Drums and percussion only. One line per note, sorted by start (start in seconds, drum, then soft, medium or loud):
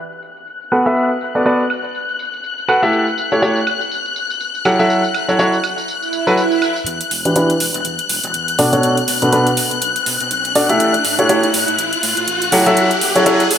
0.12 tambourine soft
0.23 tambourine medium
0.37 tambourine soft
0.47 tambourine soft
0.61 tambourine soft
0.72 tambourine medium
0.72 high woodblock medium
0.86 tambourine soft
0.96 tambourine soft
1.11 tambourine soft
1.21 tambourine medium
1.35 tambourine soft
1.46 tambourine soft
1.60 tambourine soft
1.70 tambourine medium
1.70 high woodblock medium
1.84 tambourine soft
1.95 tambourine soft
2.09 tambourine soft
2.19 tambourine medium
2.33 tambourine soft
2.44 tambourine soft
2.58 tambourine soft
2.69 tambourine medium
2.69 high woodblock medium
2.83 tambourine soft
2.93 tambourine soft
3.07 tambourine soft
3.18 tambourine medium
3.32 tambourine soft
3.42 tambourine soft
3.56 tambourine soft
3.67 tambourine medium
3.67 high woodblock medium
3.81 tambourine soft
3.92 tambourine soft
4.06 tambourine soft
4.16 tambourine medium
4.30 tambourine soft
4.41 tambourine soft
4.55 tambourine soft
4.65 tambourine medium
4.65 high woodblock medium
4.79 tambourine soft
4.90 tambourine soft
5.04 tambourine soft
5.14 tambourine medium
5.14 high woodblock medium
5.29 tambourine soft
5.39 tambourine soft
5.53 tambourine soft
5.64 tambourine medium
5.64 high woodblock medium
5.78 tambourine soft
5.88 tambourine soft
6.02 tambourine soft
6.13 tambourine medium
6.27 tambourine soft
6.37 tambourine soft
6.52 tambourine soft
6.62 tambourine medium
6.62 high woodblock medium
6.76 tambourine soft
6.87 closed hi-hat medium
7.01 closed hi-hat soft
7.11 open hi-hat medium
7.25 closed hi-hat soft
7.36 closed hi-hat medium
7.50 closed hi-hat soft
7.60 open hi-hat loud
7.74 closed hi-hat soft
7.85 closed hi-hat medium
7.99 closed hi-hat soft
8.09 open hi-hat medium
8.24 closed hi-hat soft
8.34 closed hi-hat medium
8.48 closed hi-hat soft
8.59 open hi-hat loud
8.73 closed hi-hat soft
8.83 closed hi-hat medium
8.97 closed hi-hat soft
9.08 open hi-hat loud
9.22 closed hi-hat soft
9.33 closed hi-hat medium
9.47 closed hi-hat soft
9.57 open hi-hat loud
9.71 closed hi-hat soft
9.82 closed hi-hat medium
9.96 closed hi-hat soft
10.06 open hi-hat loud
10.20 closed hi-hat soft
10.31 closed hi-hat medium
10.45 closed hi-hat soft
10.55 open hi-hat loud
10.70 closed hi-hat soft
10.80 closed hi-hat medium
10.94 closed hi-hat soft
11.05 open hi-hat loud
11.19 closed hi-hat soft
11.29 closed hi-hat medium
11.43 closed hi-hat soft
11.54 open hi-hat loud
11.68 closed hi-hat soft
11.79 closed hi-hat medium
11.93 closed hi-hat soft
12.03 open hi-hat loud
12.17 closed hi-hat soft
12.28 closed hi-hat medium
12.42 closed hi-hat soft
12.52 open hi-hat loud
12.66 closed hi-hat soft
12.77 closed hi-hat medium
12.91 closed hi-hat soft
13.01 open hi-hat loud
13.16 closed hi-hat soft
13.26 closed hi-hat medium
13.40 closed hi-hat soft
13.51 open hi-hat loud